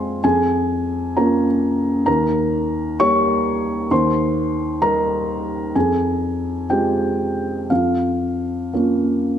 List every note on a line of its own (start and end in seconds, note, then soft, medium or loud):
0.00 0.24 F2 medium
0.00 0.19 G#3 soft
0.00 0.19 C4 soft
0.00 0.20 F4 soft
0.00 0.23 F5 medium
0.00 0.19 G#5 soft
0.00 0.25 C6 soft
0.24 1.14 F2 medium
0.24 1.13 G#4 medium
0.24 1.17 G#5 medium
1.17 2.03 A#3 soft
1.17 2.03 C#4 soft
1.17 2.03 F4 soft
1.17 1.45 A#4 soft
1.17 1.47 A#5 medium
2.06 2.96 D#2 medium
2.06 2.95 A#4 medium
2.06 2.99 A#5 medium
3.00 3.87 G3 soft
3.00 3.87 A#3 soft
3.00 3.87 G4 soft
3.00 3.87 C#5 medium
3.00 3.91 C#6 medium
3.91 4.80 D#2 medium
3.91 4.80 C5 medium
3.91 4.83 C6 medium
4.82 5.70 G3 soft
4.82 5.71 D#4 soft
4.82 5.71 G4 soft
4.82 5.71 A#4 medium
4.82 5.74 A#5 medium
5.75 6.67 F2 soft
5.75 6.66 G#4 medium
5.75 6.70 G#5 medium
6.70 7.66 G#3 soft
6.70 7.66 C4 soft
6.70 7.67 F4 soft
6.70 7.67 G4 soft
6.70 7.70 G5 medium
7.70 8.71 F2 soft
7.70 8.70 F4 soft
7.70 8.73 F5 medium
8.73 9.39 A#3 soft
8.73 9.39 C#4 soft
8.73 9.39 F4 soft